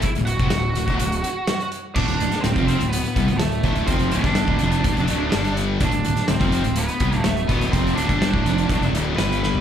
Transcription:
<<
  \new Staff \with { instrumentName = "Lead electric guitar" } { \time 4/4 \key g \major \tempo 4 = 125 <e' e''>8 <fis' fis''>2. r8 | <d' d''>4 <c' c''>8 <c' c''>8 <b b'>4 <a a'>4 | <c' c''>8 <d' d''>2. r8 | <d' d''>4 <c' c''>4 <b b'>4 <a a'>8 <b b'>8 |
<c' c''>8 <d' d''>2 r8 b'4 | }
  \new Staff \with { instrumentName = "Distorted electric guitar" } { \clef bass \time 4/4 \key g \major r16 <d, a,>8 <f, c>16 <d, a,>8 <d, a,>16 <d, a,>16 <d, a,>8 r4. | <d, a,>16 <d, a,>16 <d, a,>16 r16 <d, a,>16 <f, c f>8 <d, a,>8 r16 <c g>16 <d, a,>16 <d, a,>8 <d, a, d>8 | <f, c f>8 <d, a,>16 <g, d g>8 <d, a,>16 <f, c f>8 <d, a,>16 <f, c>16 <d, a, d>8 <g, d g>4 | <d, a,>16 <d, a,>16 <d, a,>16 r16 <d, a,>16 <f, c f>8 <d, a,>8 r16 <c g>16 <d, a,>16 <d, a,>8 <d, a, d>8 |
<f, c f>8 <d, a,>16 <g, d g>8 <d, a,>16 <f, c f>8 <d, a,>16 <f, c>16 <d, a, d>8 <g, d g>4 | }
  \new Staff \with { instrumentName = "Overdriven electric guitar" } { \clef bass \time 4/4 \key g \major r16 <d, a,>8 <f, c>16 <d, a,>8 <d, a,>16 <d, a,>16 <d, a,>8 r4. | <d, a,>16 <d, a,>16 <d, a,>16 r16 <d, a,>16 <f, c f>8 <d, a,>8 r16 <c g>16 <d, a,>16 <d, a,>8 <d, a, d>8 | <f, c f>8 <d, a,>16 <g, d g>8 <d, a,>16 <f, c f>8 <d, a,>16 <f, c>16 <d, a, d>8 <g, d g>4 | <d, a,>16 <d, a,>16 <d, a,>16 r16 <d, a,>16 <f, c f>8 <d, a,>8 r16 <c g>16 <d, a,>16 <d, a,>8 <d, a, d>8 |
<f, c f>8 <d, a,>16 <g, d g>8 <d, a,>16 <f, c f>8 <d, a,>16 <f, c>16 <d, a, d>8 <g, d g>4 | }
  \new Staff \with { instrumentName = "Overdriven electric guitar" } { \clef bass \time 4/4 \key g \major r1 | <d, a,>16 <d, a,>16 <d, a,>16 r16 <d, a,>16 <f, c f>8 <d, a,>8 r16 <c g>16 <d, a,>16 <d, a,>8 <d, a, d>8 | <f, c f>8 <d, a,>16 <g, d g>8 <d, a,>16 <f, c f>8 <d, a,>16 <f, c>16 <d, a, d>8 <g, d g>4 | <d, a,>16 <d, a,>16 <d, a,>16 r16 <d, a,>16 <f, c f>8 <d, a,>8 r16 <c g>16 <d, a,>16 <d, a,>8 <d, a, d>8 |
<f, c f>8 <d, a,>16 <g, d g>8 <d, a,>16 <f, c f>8 <d, a,>16 <f, c>16 <d, a, d>8 <g, d g>4 | }
  \new Staff \with { instrumentName = "Fingered electric bass" } { \clef bass \time 4/4 \key g \major r16 d,,8 f,,16 d,,8 d,,16 d,,16 d,,8 r4. | d,,16 d,,16 d,,16 r16 d,,16 f,,8 d,,8 r16 c,16 d,,16 d,,8 d,,8 | f,,8 d,,16 g,,8 d,,16 f,,8 d,,16 f,,16 d,,8 g,,4 | d,,16 d,,16 d,,16 r16 d,,16 f,,8 d,,8 r16 c,16 d,,16 d,,8 d,,8 |
f,,8 d,,16 g,,8 d,,16 f,,8 d,,16 f,,16 d,,8 g,,4 | }
  \new DrumStaff \with { instrumentName = "Drums" } \drummode { \time 4/4 <hh bd>16 hh16 hh16 <hh bd>16 <hh sn>8 hh16 <hh bd>16 hh16 hh16 hh8 <hh sn>16 hh16 hh8 | <cymc bd>16 hh16 hh16 <hh sn>16 <hh sn>16 <hh bd>16 hh16 hh16 hh16 hh16 <hh bd>16 hh16 <hh sn>16 hh16 <hh bd>16 hh16 | <hh bd>16 hh16 hh16 <hh bd sn>16 <hh sn>16 bd16 hh16 hh16 <hh bd>16 hh16 hh8 <hh sn>16 hh16 hh8 | <hh bd>16 hh16 hh16 <hh sn>16 <hh sn>16 <hh bd>16 hh16 hh16 hh16 hh16 <hh bd>16 hh16 <hh sn>16 hh16 <hh bd>16 hh16 |
<hh bd>16 hh16 hh16 <hh bd>16 <hh sn>16 bd16 hh16 hh16 <hh bd>16 hh16 hh8 <hh sn>16 hh16 sn16 tomfh16 | }
>>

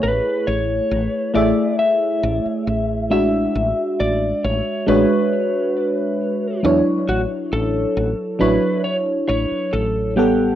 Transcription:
<<
  \new Staff \with { instrumentName = "Lead electric guitar" } { \time 4/4 \key e \mixolydian \tempo 4 = 68 b'8 cis''4 d''8 e''4. e''8~ | e''8 d''8 cis''8 b'2 r8 | fis'8 a'4 b'8 cis''8 cis''8 a'8 g'8 | }
  \new Staff \with { instrumentName = "FM electric piano" } { \time 4/4 \key e \mixolydian <a e' gis' cis''>4. <a e' gis' e''>2 <gis d' fis' e''>8~ | <gis d' fis' e''>4. <gis d' fis' cis''>2 <fis d' e' cis''>8~ | <fis d' e' cis''>4. <fis d' e' cis''>2 <g b a' fis''>8 | }
  \new Staff \with { instrumentName = "Fretless electric bass" } { \clef bass \time 4/4 \key e \mixolydian a,,8 a,,8 a,,8 a,,8 r8 a,,8 a,,4 | a,,8 a,,8 a,,8 a,,8 r4. e,8 | a,,8 a,,8 a,,8 a,,8 r8 a,,8 a,,4 | }
>>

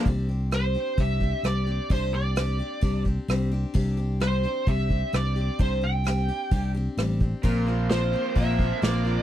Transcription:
<<
  \new Staff \with { instrumentName = "Lead electric guitar" } { \time 4/4 \key c \mixolydian \tempo 4 = 130 r4 c''4 e''4 d''4 | c''8 d''2 r4. | r4 c''4 e''4 d''4 | c''8 g''2 r4. |
r4 c''4 e''4 d''4 | }
  \new Staff \with { instrumentName = "Tonewheel organ" } { \time 4/4 \key c \mixolydian r1 | r1 | r1 | r1 |
<f' bes' c'' c'''>1 | }
  \new Staff \with { instrumentName = "Steel-string acoustic guitar" } { \time 4/4 \key c \mixolydian <c g c' d' g'>8 <c' d' g'>8 <g c' d' g'>8 <c' d' g'>8 <c g c' d' g'>8 <c' d' g'>8 <g c' d' g'>8 <c' d' g'>8 | <c g c' d' g'>8 <c' d' g'>8 <g c' d' g'>8 <c' d' g'>8 <c g c' d' g'>8 <c' d' g'>8 <g c' d' g'>8 <c' d' g'>8 | <c g c' d' g'>8 <c' d' g'>8 <g c' d' g'>8 <c' d' g'>8 <c g c' d' g'>8 <c' d' g'>8 <g c' d' g'>8 <c' d' g'>8 | <c g c' d' g'>8 <c' d' g'>8 <g c' d' g'>8 <c' d' g'>8 <c g c' d' g'>8 <c' d' g'>8 <g c' d' g'>8 <c' d' g'>8 |
<bes c' f' bes'>8 <f' bes'>8 <bes c' f' bes'>8 <c' f' bes'>8 <bes c' f' bes'>8 <c' f' bes'>8 <bes c' f' bes'>8 <c' f' bes'>8 | }
  \new Staff \with { instrumentName = "Overdriven electric guitar" } { \clef bass \time 4/4 \key c \mixolydian r1 | r1 | r1 | r1 |
bes,8 f8 f8 c'8 bes8 f8 bes8 f8 | }
  \new Staff \with { instrumentName = "Fingered electric bass" } { \clef bass \time 4/4 \key c \mixolydian c,2 c,4 c,4 | c,2 c,4 c,4 | c,2 c,4 c,4 | c,2 c,4 a,,4 |
bes,,2 bes,,4 bes,,4 | }
  \new DrumStaff \with { instrumentName = "Drums" } \drummode { \time 4/4 <hho bd>4 <hho ss>4 <hho bd>8 bd8 <hho ss>4 | <hho bd>4 <hho ss>4 <hho bd>8 bd8 <hho ss>4 | <hho bd>4 <hho ss>4 <hho bd>8 bd8 <hho ss>4 | <hho bd>4 <hho ss>4 <hho bd>4 <hho ss>8 bd8 |
<hho bd>4 <hho sn>4 <hho bd>8 bd8 <hho sn>4 | }
>>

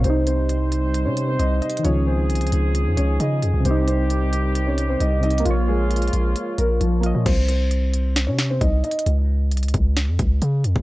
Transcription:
<<
  \new Staff \with { instrumentName = "Grand piano" } { \time 4/4 \key c \phrygian \tempo 4 = 133 <c' c''>8 <c' c''>4.~ <c' c''>16 <des' des''>8 <c' c''>16 <ees' ees''>8 <ees' ees''>8 | <des' des''>8 <c' c''>2 <des' des''>8 <ees' ees''>8 r8 | <c' c''>8 <c' c''>4.~ <c' c''>16 <des' des''>8 <c' c''>16 <ees' ees''>8 <ees' ees''>8 | <bes bes'>8 <aes aes'>2 <bes bes'>8 <f f'>4 |
<c' c''>8 <c' c''>4.~ <c' c''>16 <des' des''>8 <c' c''>16 <ees' ees''>8 <ees' ees''>8 | r1 | }
  \new Staff \with { instrumentName = "Brass ensemble" } { \time 4/4 \key c \phrygian <g c' ees' c''>1 | <des f ees' aes'>1 | <ees g c' g'>1 | <des f bes f'>1 |
r1 | r1 | }
  \new Staff \with { instrumentName = "Synth keys" } { \clef bass \time 4/4 \key c \phrygian <c g ees'>1 | <des ees f>1 | <c g ees'>2.~ <c g ees'>8 <c g ees'>8 | <bes f' des''>2.~ <bes f' des''>8 <bes f' ees''>8 |
r1 | r1 | }
  \new Staff \with { instrumentName = "808-style bass" } { \clef bass \time 4/4 \key c \phrygian c,2~ c,16 c8. c,8 r8 | des,4 c,16 des,16 des,8. f,16 des,8 des8 f,16 des,16 | c,2. c,4 | bes,,4. bes,,8 r8 bes,,8 bes,,8. bes,16 |
c,2~ c,16 c8. c,8 r8 | des,4 c,16 des,16 des,8. f,16 des,8 des8 f,16 des,16 | }
  \new DrumStaff \with { instrumentName = "Drums" } \drummode { \time 4/4 hh8 hh8 hh8 hh8 hh8 hh8 \tuplet 3/2 { hh16 r16 r16 hh16 hh16 hh16 } | hh4 hh32 hh32 hh32 hh32 hh8 hh8 hh8 hh8 hh8 | hh8 hh8 hh8 hh8 hh8 hh8 \tuplet 3/2 { hh16 r16 r16 hh16 hh16 hh16 } | hh4 hh32 hh32 hh32 hh32 hh8 hh8 hh8 hh8 hh8 |
<cymc hh bd>8 hh8 hh8 hh8 <hh sn>8 <hh sn>8 \tuplet 3/2 { <hh bd>16 r16 r16 hh16 hh16 hh16 } | hh4 hh32 hh32 hh32 hh32 <hh bd>8 <hh sn>8 <hh bd>8 hh8 hh16 bd16 | }
>>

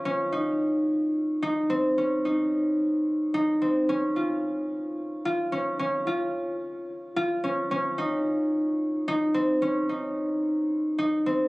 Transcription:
\new Staff \with { instrumentName = "Harp" } { \time 7/8 \key des \major \tempo 4 = 110 des'8 ees'4 r4 ees'8 c'8 | des'8 ees'4 r4 ees'8 c'8 | des'8 f'4 r4 f'8 des'8 | des'8 f'4 r4 f'8 des'8 |
des'8 ees'4 r4 ees'8 c'8 | des'8 ees'4 r4 ees'8 c'8 | }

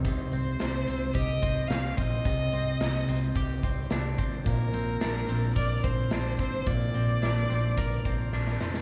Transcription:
<<
  \new Staff \with { instrumentName = "Violin" } { \time 4/4 \key c \minor \tempo 4 = 109 c''2 ees''4 f''8 ees''8~ | ees''2~ ees''8 r4. | bes'2 d''8 c''4 c''8 | d''2.~ d''8 r8 | }
  \new Staff \with { instrumentName = "Clean electric guitar" } { \time 4/4 \key c \minor c8 c'4 c'8 g'8 c'4 c'8 | c8 c'4 c'8 g'8 c'8 d'8 c'8 | bes,8 c'8 d'8 c'8 bes'8 c'8 d'8 c'8 | bes,8 c'8 d'8 c'8 bes'8 c'8 d'8 c'8 | }
  \new Staff \with { instrumentName = "Fingered electric bass" } { \clef bass \time 4/4 \key c \minor c,8 c,8 c,8 c,8 c,8 c,8 c,8 bes,,8 | c,8 c,8 c,8 c,8 c,8 c,8 c,8 aes,,8 | bes,,8 bes,,8 bes,,8 bes,,8 bes,,8 bes,,8 bes,,8 r8 | bes,,8 bes,,8 bes,,8 bes,,8 r8 bes,,8 bes,,8 f,,8 | }
  \new DrumStaff \with { instrumentName = "Drums" } \drummode { \time 4/4 <hh bd>8 hh8 <hh sn>8 hh8 <hh bd>8 <hh bd>8 <hh sn>8 <hh bd>8 | <hh bd>8 hh8 <hh sn>8 hh8 <hh bd>8 <hh bd>8 <hh sn>8 <hh bd>8 | <hh bd>8 hh8 <hh sn>8 hh8 <hh bd>8 <hh bd>8 <hh sn>8 <hh bd>8 | <hh bd>8 hh8 <hh sn>8 hh8 <hh bd>8 <hh bd>8 sn16 sn16 sn16 sn16 | }
>>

